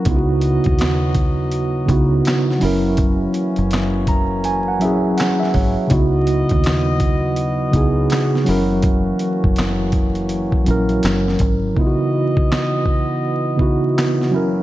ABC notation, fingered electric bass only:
X:1
M:4/4
L:1/16
Q:"Swing 16ths" 1/4=82
K:C#dor
V:1 name="Fingered electric bass" clef=bass
C,,3 D,,6- D,, C,,2 z2 F,,,2- | F,,,2 z F,,,6- F,,, A,,,2 z2 G,,, z | C,,3 D,,6- D,, C,,2 z2 F,,,2- | F,,,2 z F,,,6- F,,, A,,,2 F,,,2 G,,,2 |
z16 |]